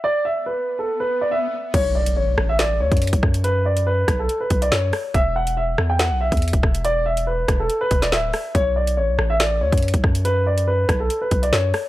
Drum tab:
CC |--------------------------------|x-------------------------------|--------------------------------|--------------------------------|
HH |--------------------------------|x-----x---------x-----xxxxx---x-|x-----x-----x---x---x-x-----o---|x-----x---------x-----xxxxx---x-|
SD |--------------------------------|------------r---o-----------r---|------------r-----------o---r---|------------r---o-----------r---|
BD |--------------------------------|o---------------------o---o-o---|------------o-------o-----------|o---------------------o---o-o---|

CC |--------------------------------|--------------------------------|--------------------------------|
HH |x-----x-----x---x---x-x-----o---|x-----x---------x-----xxxxx---x-|x-----x-----x---x---x-x-----o---|
SD |------------r---------o-o---r---|------------r---o-----------r---|------------r-----------o---r---|
BD |------------o-------o-----------|o---------------------o---o-o---|------------o-------o-----------|